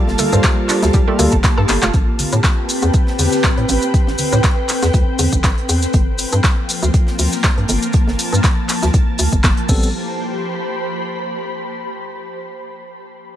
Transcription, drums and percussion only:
0.08 snare
0.18 closed hi-hat, open hi-hat, high conga, maracas
0.33 closed hi-hat, low conga, maracas
0.43 kick, snare, clap, closed hi-hat, maracas
0.69 clap, closed hi-hat, open hi-hat, maracas
0.83 snare, closed hi-hat, maracas
0.93 kick, closed hi-hat, maracas
1.19 closed hi-hat, open hi-hat, high conga, maracas
1.32 kick, closed hi-hat, maracas
1.43 kick, snare, clap, closed hi-hat, maracas
1.69 clap, closed hi-hat, open hi-hat, maracas
1.82 clap, closed hi-hat, maracas
1.93 kick, closed hi-hat, maracas
2.19 closed hi-hat, open hi-hat, high conga, maracas
2.33 closed hi-hat, maracas
2.44 kick, snare, clap, closed hi-hat, maracas
2.69 closed hi-hat, open hi-hat, maracas
2.82 closed hi-hat, maracas
2.94 kick, closed hi-hat, maracas
3.07 snare
3.19 open hi-hat, high conga, maracas
3.32 snare, closed hi-hat, maracas
3.44 kick, snare, clap, closed hi-hat, low conga, maracas
3.57 closed hi-hat
3.69 closed hi-hat, open hi-hat, maracas
3.82 closed hi-hat, maracas
3.94 kick, closed hi-hat, maracas
4.07 snare
4.18 closed hi-hat, open hi-hat, high conga, maracas
4.32 closed hi-hat, low conga, maracas
4.43 kick, snare, clap, closed hi-hat, maracas
4.69 clap, closed hi-hat, open hi-hat, maracas
4.83 snare, closed hi-hat, maracas
4.94 kick, closed hi-hat, maracas
5.19 closed hi-hat, open hi-hat, high conga, maracas
5.32 kick, closed hi-hat, maracas
5.43 kick, snare, clap, closed hi-hat, maracas
5.58 closed hi-hat
5.69 closed hi-hat, open hi-hat, maracas
5.82 snare, closed hi-hat, maracas
5.93 kick, closed hi-hat, maracas
6.18 closed hi-hat, open hi-hat, maracas
6.32 closed hi-hat, maracas
6.44 kick, snare, clap, closed hi-hat, maracas
6.69 closed hi-hat, open hi-hat, maracas
6.83 closed hi-hat, maracas
6.94 kick, closed hi-hat, maracas
7.07 snare
7.19 open hi-hat, maracas
7.32 snare, closed hi-hat, maracas
7.44 kick, snare, clap, closed hi-hat, maracas
7.58 closed hi-hat
7.68 closed hi-hat, open hi-hat, maracas
7.83 closed hi-hat, maracas
7.93 kick, closed hi-hat, maracas
8.08 snare
8.19 closed hi-hat, open hi-hat, maracas
8.33 closed hi-hat, maracas
8.44 kick, snare, clap, closed hi-hat, maracas
8.69 clap, closed hi-hat, open hi-hat, maracas
8.83 snare, closed hi-hat, maracas
8.94 kick, closed hi-hat, maracas
9.18 closed hi-hat, open hi-hat, maracas
9.32 kick, closed hi-hat, maracas
9.44 kick, snare, clap, closed hi-hat, maracas
9.57 closed hi-hat
9.69 kick, crash, maracas
9.83 maracas

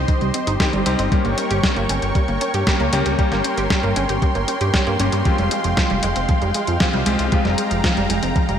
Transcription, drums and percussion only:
0.08 kick, closed hi-hat
0.21 closed hi-hat
0.34 closed hi-hat
0.47 closed hi-hat
0.60 kick, snare, closed hi-hat
0.73 closed hi-hat
0.86 closed hi-hat
0.99 closed hi-hat
1.12 kick, closed hi-hat
1.25 closed hi-hat
1.38 closed hi-hat
1.51 closed hi-hat
1.64 kick, snare, closed hi-hat
1.76 closed hi-hat
1.89 closed hi-hat
2.02 closed hi-hat
2.15 kick, closed hi-hat
2.28 closed hi-hat
2.41 closed hi-hat
2.54 closed hi-hat
2.67 kick, snare, closed hi-hat
2.80 closed hi-hat
2.93 closed hi-hat
3.06 closed hi-hat
3.19 kick, closed hi-hat
3.32 snare, closed hi-hat
3.44 closed hi-hat
3.58 closed hi-hat
3.70 kick, snare, closed hi-hat
3.83 closed hi-hat
3.96 closed hi-hat
4.09 closed hi-hat
4.22 kick, closed hi-hat
4.35 closed hi-hat
4.48 closed hi-hat
4.61 closed hi-hat
4.74 kick, snare, closed hi-hat
4.87 closed hi-hat
5.00 closed hi-hat
5.12 closed hi-hat
5.25 kick, closed hi-hat
5.38 closed hi-hat
5.51 closed hi-hat
5.64 closed hi-hat
5.77 kick, snare, closed hi-hat
5.90 closed hi-hat
6.03 closed hi-hat
6.16 closed hi-hat
6.29 kick, closed hi-hat
6.42 closed hi-hat
6.54 closed hi-hat
6.67 closed hi-hat
6.80 kick, snare, closed hi-hat
6.93 closed hi-hat
7.06 closed hi-hat
7.19 closed hi-hat
7.32 kick, closed hi-hat
7.45 snare, closed hi-hat
7.58 closed hi-hat
7.71 closed hi-hat
7.84 kick, snare, closed hi-hat
7.97 closed hi-hat
8.10 closed hi-hat
8.23 closed hi-hat
8.36 kick, closed hi-hat
8.49 closed hi-hat

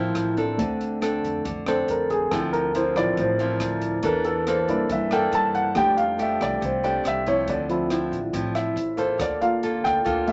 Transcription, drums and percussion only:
0.15 cross-stick, closed hi-hat
0.37 kick, closed hi-hat
0.59 kick, closed hi-hat
0.81 closed hi-hat
1.02 cross-stick, closed hi-hat
1.24 kick, closed hi-hat
1.45 kick, closed hi-hat
1.66 cross-stick, closed hi-hat
1.88 closed hi-hat
2.10 kick, closed hi-hat
2.32 kick, cross-stick, closed hi-hat
2.53 closed hi-hat
2.75 closed hi-hat
2.96 kick, cross-stick, closed hi-hat
3.17 kick, closed hi-hat
3.39 closed hi-hat
3.60 cross-stick, closed hi-hat
3.82 kick, closed hi-hat
4.03 kick, closed hi-hat
4.24 closed hi-hat
4.47 cross-stick, closed hi-hat
4.68 kick, closed hi-hat
4.90 kick, closed hi-hat
5.11 cross-stick, closed hi-hat
5.33 closed hi-hat
5.54 kick, closed hi-hat
5.75 kick, cross-stick, closed hi-hat
5.98 closed hi-hat
6.19 closed hi-hat
6.41 kick, cross-stick, closed hi-hat
6.62 kick, closed hi-hat
6.84 closed hi-hat
7.05 cross-stick, closed hi-hat
7.26 kick, closed hi-hat
7.48 kick, closed hi-hat
7.69 closed hi-hat
7.90 cross-stick, closed hi-hat
8.12 kick, closed hi-hat
8.33 kick, closed hi-hat
8.55 cross-stick, closed hi-hat
8.77 closed hi-hat
8.98 kick, closed hi-hat
9.19 kick, cross-stick, closed hi-hat
9.42 closed hi-hat
9.63 closed hi-hat
9.84 kick, cross-stick, closed hi-hat
10.06 kick, closed hi-hat
10.27 closed hi-hat

